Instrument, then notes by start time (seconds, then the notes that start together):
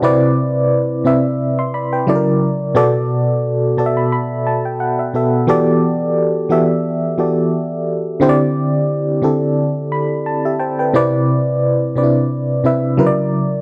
fm electric piano
Already playing: F#4
0.02 C3 C4 E4 B4 D5
1.04 C3 C4 E4 B4 E5
1.59 E5 C6
1.74 D5 B5
1.93 B4 G5
2.07 C#3 F#3 E4 A4 D5
2.15 A#4
2.75 B2 B3 F#4 A4 D5
3.77 B2 B3 F#4 A4 D5 A5
3.86 E5
3.97 B5
4.13 B5
4.47 A5
4.65 G5
4.80 F#5
4.99 E5
5.14 B2 B3 F#4 A4 E5
5.47 E3 B3 F#4 G4 A4 D5
6.49 E3 B3 F#4 G4 A4 E5
7.18 E3 B3 F#4 G4 A4 D5
8.20 D3 C4 E4 G4 C5
8.29 D5
9.22 D3 C4 E4 G4 A4
9.92 B5
10.26 A5
10.45 G4 E5
10.60 C5 G5 A5
10.79 B4 G5
10.94 C3 C4 E4 B4 D5
11.95 C3 C4 D4 B4 D5
12.04 E4
12.64 C3 C4 E4 B4 E5
12.97 C#3 F#3 E4 A#4 B4
13.07 D5